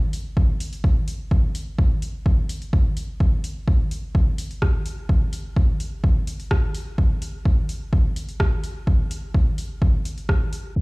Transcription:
0.13 open hi-hat
0.37 kick
0.60 open hi-hat
0.73 open hi-hat
0.84 kick
1.08 open hi-hat
1.31 kick
1.55 open hi-hat
1.79 kick
2.02 open hi-hat
2.26 kick
2.49 open hi-hat
2.62 open hi-hat
2.73 kick
2.97 open hi-hat
3.20 kick
3.44 open hi-hat
3.68 kick
3.91 open hi-hat
4.15 kick
4.38 open hi-hat
4.51 open hi-hat
4.62 kick, cross-stick
4.86 open hi-hat
5.09 kick
5.33 open hi-hat
5.56 kick
5.80 open hi-hat
6.04 kick
6.27 open hi-hat
6.40 open hi-hat
6.51 kick, cross-stick
6.75 open hi-hat
6.98 kick
7.22 open hi-hat
7.45 kick
7.69 open hi-hat
7.93 kick
8.16 open hi-hat
8.29 open hi-hat
8.40 kick, cross-stick
8.64 open hi-hat
8.87 kick
9.11 open hi-hat
9.34 kick
9.58 open hi-hat
9.82 kick
10.05 open hi-hat
10.18 open hi-hat
10.29 kick, cross-stick
10.53 open hi-hat
10.76 kick

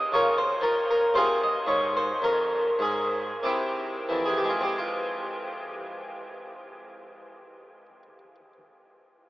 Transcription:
Already playing: D#5
0.12 C#3 F4 A#4 C#5
0.38 C5
0.61 F3 A#4
0.91 A#4
1.14 C3 F4 G#4 C5
1.44 D#5
1.67 G#2 C#5
1.97 C5
2.22 F2 A#4
2.79 G#2 G#4
3.43 C3 C4 E4 G4
4.09 F2 E3
4.25 C3 G#4
4.37 G4
4.44 G#3
4.49 F4
4.61 C4 G4
4.78 F4

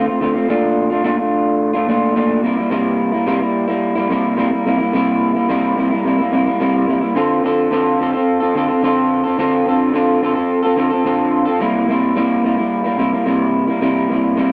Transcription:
0.07 A3 C4 F4
0.20 D3 A3 C4 F4
0.34 A3 C4 F4
0.49 A#2 A3 D4 F4
0.90 A3 D4 F4
1.04 A#2 A3 D4 F4
1.18 A3 D4 F4
1.73 A3 D4 F4
1.87 A#2 A3 D4 F4
2.15 A#2 A3 D4 F4
2.42 C3 G3 A#3 E4
2.57 G3 A#3 E4
2.70 C3 G3 A#3 E4
3.12 G3 A#3 E4
3.26 C3 G3 A#3 E4
3.40 G3 A#3 E4
3.68 G3 A#3 E4
3.95 G3 A#3 E4
4.09 C3 G3 A#3 E4
4.37 C3 G3 A#3 E4
4.51 G3 A#3 E4
4.65 C3 G3 A#3 E4
4.78 G3 A#3 E4
4.93 C3 G3 A#3 E4
5.35 G3 A#3 E4
5.49 C3 G3 A#3 E4
5.76 C3 G3 A#3 E4
5.90 G3 A#3 E4
6.05 C3 G3 A#3 E4
6.18 G3 A#3 E4
6.32 C3 G3 A#3 E4
6.46 G3 A#3 E4
6.60 C3 G3 A#3 E4
6.87 C3 G3 A#3 E4
7.01 G3 A#3 E4
7.15 D3 C4 F4 A4
7.42 D3 C4 F4 A4
7.71 D3 C4 F4 A4
7.99 D3 C4 F4 A4
8.13 C4 F4 A4
8.40 C4 F4 A4
8.55 D3 C4 F4 A4
8.68 C4 F4 A4
8.82 D3 C4 F4 A4
9.24 C4 F4 A4
9.38 D3 C4 F4 A4
9.65 D3 C4 F4 A4
9.94 D3 C4 F4 A4
10.21 D3 C4 F4 A4
10.35 C4 F4 A4
10.62 C4 F4 A4
10.76 D3 C4 F4 A4
10.90 C4 F4 A4
11.05 D3 C4 F4 A4
11.45 C4 F4 A4
11.59 C3 G3 A#3 E4
11.87 C3 G3 A#3 E4
12.15 C3 G3 A#3 E4
12.43 C3 G3 A#3 E4
12.57 G3 A#3 E4
12.84 G3 A#3 E4
12.98 C3 G3 A#3 E4
13.13 G3 A#3 E4
13.26 C3 G3 A#3 E4
13.67 G3 A#3 E4
13.81 C3 G3 A#3 E4
14.09 C3 G3 A#3 E4
14.37 C3 G3 A#3 E4

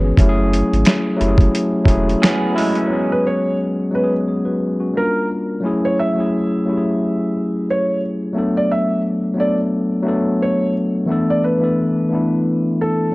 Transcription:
Already playing: G1 D#3 E3 G#3 B3 C#4 F#4 G#4 B4 C#5
0.04 C#4 G#4
0.17 F#1 F#3 A3 C#4, kick, closed hi-hat
0.21 E4 G4
0.29 G#4
0.53 closed hi-hat
0.73 G#1, closed hi-hat
0.85 finger snap, snare, closed hi-hat
1.16 F#3 A3 C#4
1.21 F#1 E4 G4, closed hi-hat
1.29 G#4
1.38 kick, closed hi-hat
1.55 closed hi-hat
1.84 E1 F#3 A3 C#4, kick, closed hi-hat
1.88 E4 G#4
2.09 closed hi-hat
2.22 B3 G#4, finger snap, snare, closed hi-hat
2.53 F#3 G#3 A3 C#4 E4
2.57 E4 G#4, open hi-hat
2.75 E3 C#4, closed hi-hat
2.88 F#3 G#3 B3
2.92 C#4 G#4
3.12 B4
3.27 C#5
3.91 F#3 G#3 B3 B4
3.96 C#4 F#4
4.04 G#4
4.28 G#4 C#5
4.45 F#4 B4
4.80 C#4 F#4
4.94 G3 A#3 D4 A#4
4.98 F4 A#4
5.61 F#3 A3 C#4
5.65 E4 G#4
5.85 C#5
5.99 E5
6.15 F#3 A3 C#4
6.19 E4 G#4
6.65 F#3 A3 C#4
6.69 E4 G4
6.77 G#4
7.70 C#5
8.33 F#3 A3 B3
8.37 D4 A4
8.57 D5
8.72 E5
9.34 F#3 A3 B3
9.38 D4 A4 D5
10.02 F#3 A3 B3
10.07 D4 A4
10.43 C#5
11.06 E3 A3 B3
11.10 D4 A4
11.30 D5
11.44 B4
11.58 E3 A3 B3
11.63 D4 A4
12.09 E3 A3 B3
12.13 D4 E4
12.81 A4
13.12 F#3

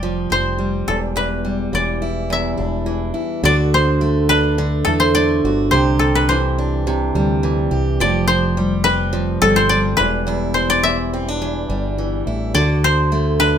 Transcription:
Already playing: F1 G3 G4 D5
0.03 F3
0.30 F1 C4 C5
0.58 G3
0.88 E1 E2 A4
1.16 E2 B4
1.45 G3
1.72 E1 E3 D5
2.02 E4
2.30 E2 E5
2.57 E1 D4
2.86 E3
3.14 E4
3.43 D2 D3 F#4 D5
3.74 C5
4.01 A3
4.29 D4 B4
4.58 D3
4.85 E2 A3 A4
5.00 C5
5.15 A3 D5
5.44 G1 F#4
5.71 C2 C3 G4 C5
5.99 A4
6.15 B4
6.29 E3 C5
6.58 D4
6.87 C3
7.15 D2 G3
7.43 E3
7.71 C2 G4
8.00 F1 F3 G4 D5
8.27 C5
8.57 G3
8.84 C4 B4
9.13 F3
9.42 G1 G3 A4
9.56 C5
9.69 G3 D5
9.97 E1 E2 B4
10.27 E2 E4
10.54 C5
10.70 D5
10.83 E3 E5
11.13 C4
11.28 D4
11.42 E2
11.69 G1 G3
11.98 E3
12.27 A1 E4
12.54 D2 D3 F#4 D5
12.84 C5
13.12 A3
13.40 D4 B4

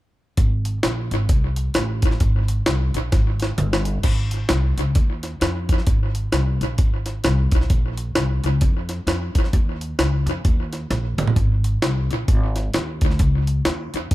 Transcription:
0.37 G#1, kick, closed hi-hat
0.65 closed hi-hat
0.83 A#1, snare, closed hi-hat
1.11 G#1, closed hi-hat
1.29 C2, kick, closed hi-hat
1.56 closed hi-hat
1.74 A1, snare, closed hi-hat
2.02 kick, closed hi-hat
2.11 snare
2.20 G#1, kick, closed hi-hat
2.48 closed hi-hat
2.66 C2, snare, closed hi-hat
2.94 A#1, closed hi-hat
3.12 G#1, kick, snare, closed hi-hat
3.40 snare, closed hi-hat
3.58 G1, closed hi-hat, mid tom
3.73 snare
3.85 closed hi-hat
4.03 G#1, kick, closed hi-hat, crash
4.31 closed hi-hat
4.49 C2, snare, closed hi-hat
4.77 C#2, closed hi-hat
4.95 D#2, kick, closed hi-hat
5.23 snare, closed hi-hat
5.41 F2, snare, closed hi-hat
5.69 kick, closed hi-hat
5.78 snare
5.87 G#1, kick, closed hi-hat
6.15 closed hi-hat
6.32 C2, snare, closed hi-hat
6.61 A#1, closed hi-hat
6.78 G#1, kick, closed hi-hat
7.06 snare, closed hi-hat
7.24 C2, snare, closed hi-hat
7.51 B1, kick, closed hi-hat
7.61 snare
7.70 A#1, kick, closed hi-hat
7.97 closed hi-hat
8.15 C2, snare, closed hi-hat
8.44 C#2, closed hi-hat
8.61 F2, kick, closed hi-hat
8.89 snare, closed hi-hat
9.07 F2, snare, closed hi-hat
9.35 E2, kick, closed hi-hat
9.44 snare
9.53 D#2, kick, closed hi-hat
9.81 closed hi-hat
9.99 C#2, snare, closed hi-hat
10.26 F2, closed hi-hat
10.45 D#2, kick, closed hi-hat
10.73 snare, closed hi-hat
10.90 A#1, snare, closed hi-hat
11.18 A1, closed hi-hat, mid tom
11.28 floor tom
11.36 G#1, kick, closed hi-hat
11.64 closed hi-hat
11.82 C2, snare, closed hi-hat
12.11 A#1, closed hi-hat
12.28 G#1, kick, closed hi-hat
12.56 snare, closed hi-hat
12.74 D#2, snare, closed hi-hat
13.01 D2, kick, closed hi-hat
13.11 snare
13.19 C#2, kick, closed hi-hat
13.47 closed hi-hat
13.65 D#2, snare, closed hi-hat
13.94 E2, closed hi-hat
14.11 D2, kick, closed hi-hat

